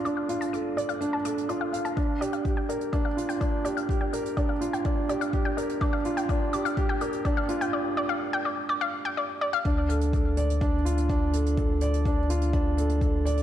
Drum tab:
HH |x-xxx-xxx-xxx-xx|x-xxx-xxx-xxx-xx|x-xxx-xxx-xxx-xx|x-xxx-xxx-xxx-xx|
BD |----------------|o---o---o---o---|o---o---o---o---|o---o---o---o---|

HH |----------------|x-xxx-xxx-xxx-xx|x-xxx-xxx-xxx-xx|
BD |----------------|o---o---o---o---|o---o---o---o---|